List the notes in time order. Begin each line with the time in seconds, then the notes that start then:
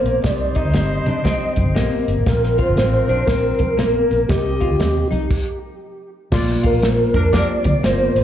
Already playing: A#3 C4 A#4 C5 F5
0.04 A#1, closed hi-hat
0.23 C2 C3 G3 C4 D#4 G4 C5 D5 D#5, kick, snare, closed hi-hat, muted conga
0.55 D#4 D#5, kick, closed hi-hat, muted conga
0.64 D2
0.74 G1 C4 G4 D#5, snare, closed hi-hat, high conga
1.06 C3 D4, closed hi-hat, low conga
1.24 C3 C4 G4 D#5, kick, snare, closed hi-hat, muted conga
1.56 G1, kick, closed hi-hat, muted conga, low conga
1.75 A#1 A#3 C4 G4 D#5, snare, closed hi-hat, high conga
1.93 high conga
2.08 G1, closed hi-hat
2.17 A1
2.26 A#1 A#2 F3 C4 A#4 F5, kick, snare, closed hi-hat, muted conga
2.43 snare
2.58 F4 C5, kick, closed hi-hat
2.68 G1
2.76 A1 C4 A#4 F5, snare, closed hi-hat, high conga
3.08 A#1 D4, closed hi-hat, low conga
3.27 A#1 C4 A#4 C5, kick, snare, closed hi-hat, muted conga
3.59 C2, kick, closed hi-hat, muted conga, low conga
3.77 A#1 A#3 C4 A#4 F5, snare, closed hi-hat, high conga
3.94 high conga
4.11 A#1, closed hi-hat
4.29 C2 C3 C4 G4 D#5, kick, snare, closed hi-hat, muted conga
4.61 F4, kick, closed hi-hat, muted conga
4.70 D2
4.79 D#2 C4 G4 D#5, snare, closed hi-hat, high conga
5.11 C2 D#4, closed hi-hat, low conga
5.31 kick, crash
6.32 A#1 A#2 A#3 F4 D5, kick, snare, crash, muted conga
6.49 snare
6.63 F4 A#4, kick, closed hi-hat, muted conga
6.73 A#1
6.82 A#3 F4 A#4, snare, closed hi-hat, high conga
6.89 C5
7.14 F2 F3 D4 A#4, kick, closed hi-hat, low conga
7.32 F3 A#3 C4 D4 F4 G4 A#4 D5, kick, snare, closed hi-hat, muted conga
7.64 D2, kick, closed hi-hat, muted conga, low conga
7.75 C2
7.83 G1 A#3 F4 C5 D5, snare, closed hi-hat, high conga
8.00 high conga
8.15 A1, closed hi-hat